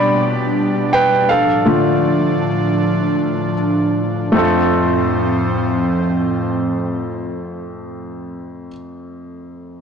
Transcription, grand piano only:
0.00 1.25 B2 soft
0.00 1.25 B3 soft
0.00 1.25 D4 soft
0.00 1.31 F4 medium
0.00 1.31 G4 medium
0.00 1.31 D5 medium
0.00 0.96 B5 medium
0.93 1.02 B4 medium
0.93 1.01 G5 medium
1.29 3.52 A4 soft
1.29 3.51 F5 medium
1.65 4.31 D3 soft
1.65 4.30 A3 soft
1.65 4.32 F4 soft
4.32 8.69 F2 medium
4.32 8.66 A3 medium
4.32 8.68 C4 medium
4.36 8.70 F4 medium
4.36 8.72 A4 medium

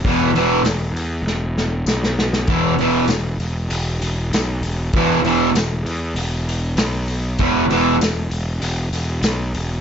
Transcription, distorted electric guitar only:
0.06 0.30 E2 medium
0.06 0.30 B2 loud
0.06 0.31 E3 medium
0.35 0.60 E2 medium
0.35 0.60 B2 medium
0.35 0.61 E3 medium
2.49 2.73 E2 medium
2.49 2.74 B2 medium
2.49 2.74 E3 loud
2.81 3.04 E2 medium
2.81 3.05 B2 loud
2.81 3.05 E3 loud
4.96 5.19 E2 medium
4.96 5.19 B2 medium
4.96 5.20 E3 medium
5.25 5.49 E2 medium
5.25 5.49 B2 loud
5.25 5.49 E3 loud
7.39 7.64 E2 medium
7.39 7.64 B2 medium
7.39 7.64 E3 medium
7.70 7.94 E2 medium
7.70 7.95 B2 medium
7.70 7.96 E3 medium

